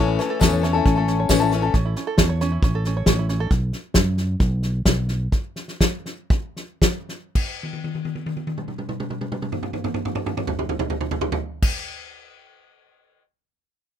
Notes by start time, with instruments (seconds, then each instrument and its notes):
Already playing: fingered electric bass A1, steel-string acoustic guitar A2 E3 A3 C#4, five-string banjo C#4
0.00 steel-string acoustic guitar A4
0.08 five-string banjo E4
0.19 steel-string acoustic guitar E3 A3 C#4 A4, five-string banjo C#4, snare
0.30 five-string banjo A4
0.40 fingered electric bass E2, steel-string acoustic guitar A2 E3 A3 C#4 A4, five-string banjo C#4, kick, snare, tambourine
0.53 five-string banjo C#5
0.62 steel-string acoustic guitar E3 A3 C#4 A4, five-string banjo C#4, snare
0.73 steel-string acoustic guitar A3 C#4 A4, five-string banjo E4
0.85 fingered electric bass A1, five-string banjo C#4, kick, snare
0.96 steel-string acoustic guitar A3 C#4 A4, five-string banjo A4
1.07 five-string banjo C#4, snare
1.20 five-string banjo C#5
1.29 fingered electric bass A1, steel-string acoustic guitar A2 E3 A3 C#4 A4, five-string banjo C#4, kick, snare, tambourine
1.40 steel-string acoustic guitar A3 C#4 A4, five-string banjo E4
1.51 steel-string acoustic guitar E3 A3 C#4 A4, five-string banjo C#4, snare
1.62 steel-string acoustic guitar A3 C#4 A4, five-string banjo A4
1.74 fingered electric bass A1, five-string banjo C#4, kick, snare
1.85 five-string banjo E4
1.96 five-string banjo C#4, snare
2.07 five-string banjo A4
2.18 fingered electric bass E2, five-string banjo C#4, kick, snare
2.29 five-string banjo C#5
2.40 five-string banjo C#4, snare
2.52 five-string banjo E4
2.62 fingered electric bass A1, five-string banjo C#4, kick, snare
2.75 five-string banjo A4
2.85 five-string banjo C#4, snare
2.97 five-string banjo C#5
3.06 fingered electric bass A1, five-string banjo C#4, kick, snare
3.19 five-string banjo E4
3.29 five-string banjo C#4, snare
3.40 five-string banjo A4
3.50 fingered electric bass B1, kick, snare
3.73 snare
3.94 fingered electric bass F#2, kick, snare
4.17 snare
4.39 fingered electric bass B1, kick, snare
4.63 snare
4.85 fingered electric bass B1, kick, snare
5.08 snare
5.32 kick, snare
5.56 snare
5.68 snare
5.81 kick, snare
6.06 snare
6.30 kick, snare
6.56 snare
6.82 kick, snare
7.09 snare
7.35 kick, crash
7.63 high tom
7.73 high tom
7.84 high tom
7.95 high tom
8.05 high tom
8.15 high tom
8.26 high tom
8.37 high tom
8.47 high tom
8.58 mid tom
8.68 mid tom
8.78 mid tom
8.89 mid tom
9.00 mid tom
9.10 mid tom
9.21 mid tom
9.32 mid tom
9.42 mid tom
9.52 mid tom
9.63 mid tom
9.73 mid tom
9.84 mid tom
9.94 mid tom
10.05 mid tom
10.15 mid tom
10.26 mid tom
10.37 mid tom
10.47 floor tom
10.59 floor tom
10.69 floor tom
10.79 floor tom
10.90 floor tom
11.01 floor tom
11.11 floor tom
11.21 floor tom
11.32 floor tom
11.62 kick, crash